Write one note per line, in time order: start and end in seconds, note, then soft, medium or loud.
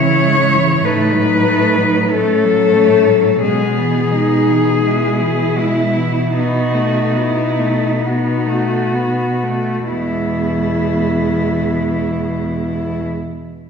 0.00 0.87 C#3 medium
0.00 0.27 E3 soft
0.00 0.86 E4 medium
0.00 0.87 C#5 medium
0.25 0.56 G#3 soft
0.55 0.85 E3 soft
0.84 3.40 A2 medium
0.84 1.16 A3 soft
0.84 2.12 D#4 medium
0.84 2.13 B4 medium
1.14 1.48 F#3 soft
1.46 1.78 A3 soft
1.77 2.10 F#3 soft
2.11 2.46 A3 soft
2.11 3.43 C#4 medium
2.11 3.43 A4 medium
2.45 2.77 F#3 soft
2.75 3.11 A3 soft
3.10 3.42 F#3 soft
3.43 9.55 B2 medium
3.43 3.79 G#3 soft
3.43 4.13 B3 medium
3.43 5.60 G#4 medium
3.78 4.14 E3 soft
4.11 4.49 G#3 soft
4.11 4.86 D#4 medium
4.48 4.83 E3 soft
4.83 5.20 G#3 soft
4.83 6.40 E4 soft
5.19 5.58 E3 soft
5.57 5.96 G#3 soft
5.57 6.36 E4 medium
5.94 6.34 E3 soft
6.34 6.76 B3 soft
6.34 8.07 D#4 medium
6.38 7.20 F#4 soft
6.74 7.18 A3 soft
7.17 7.60 B3 soft
7.17 8.07 E4 soft
7.59 8.01 A3 soft
8.02 8.48 B3 soft
8.02 8.97 D#4 soft
8.02 9.90 F#4 soft
8.47 8.96 A3 soft
8.95 9.45 B3 soft
9.43 9.88 A3 soft
9.89 13.04 E2 soft
9.89 13.03 B2 soft
9.89 13.03 G#3 soft
9.89 13.05 E4 medium